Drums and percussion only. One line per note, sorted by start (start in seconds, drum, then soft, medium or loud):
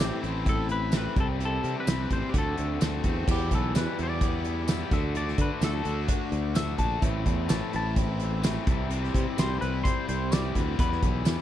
0.00 snare loud
0.00 closed hi-hat medium
0.00 tambourine loud
0.24 closed hi-hat medium
0.46 kick medium
0.46 closed hi-hat medium
0.69 closed hi-hat medium
0.92 snare loud
0.92 closed hi-hat medium
0.92 tambourine medium
1.16 kick medium
1.16 closed hi-hat medium
1.41 closed hi-hat medium
1.64 closed hi-hat medium
1.87 snare loud
1.87 closed hi-hat medium
1.87 tambourine loud
2.11 kick medium
2.11 closed hi-hat medium
2.34 kick medium
2.34 closed hi-hat medium
2.58 closed hi-hat medium
2.81 snare loud
2.81 closed hi-hat medium
2.81 tambourine loud
3.04 kick medium
3.04 closed hi-hat medium
3.28 kick loud
3.28 crash loud
3.51 kick medium
3.51 closed hi-hat medium
3.75 snare loud
3.75 closed hi-hat medium
3.75 tambourine loud
3.99 closed hi-hat medium
4.21 kick medium
4.21 closed hi-hat medium
4.45 closed hi-hat medium
4.68 snare loud
4.68 closed hi-hat medium
4.68 tambourine loud
4.91 kick medium
4.91 snare soft
4.91 closed hi-hat medium
5.15 closed hi-hat medium
5.28 snare soft
5.38 kick medium
5.38 closed hi-hat medium
5.62 snare loud
5.62 closed hi-hat medium
5.62 tambourine loud
5.85 closed hi-hat medium
6.08 kick medium
6.08 closed hi-hat medium
6.32 closed hi-hat medium
6.55 snare loud
6.55 closed hi-hat medium
6.55 tambourine loud
6.78 kick medium
6.78 closed hi-hat medium
7.02 kick loud
7.02 closed hi-hat medium
7.26 kick medium
7.26 closed hi-hat medium
7.49 snare loud
7.49 closed hi-hat medium
7.49 tambourine loud
7.73 closed hi-hat medium
7.96 kick medium
7.96 closed hi-hat medium
8.20 closed hi-hat medium
8.43 snare loud
8.43 closed hi-hat medium
8.43 tambourine loud
8.67 kick loud
8.67 closed hi-hat medium
8.91 closed hi-hat medium
9.04 snare soft
9.15 kick medium
9.15 closed hi-hat medium
9.38 snare loud
9.38 closed hi-hat medium
9.38 tambourine loud
9.62 closed hi-hat medium
9.85 kick medium
9.85 closed hi-hat medium
10.09 closed hi-hat medium
10.32 snare loud
10.32 closed hi-hat medium
10.32 tambourine loud
10.55 kick medium
10.55 closed hi-hat medium
10.79 kick loud
10.79 closed hi-hat medium
10.92 snare soft
11.03 kick medium
11.03 closed hi-hat medium
11.25 snare loud
11.25 closed hi-hat medium
11.25 tambourine loud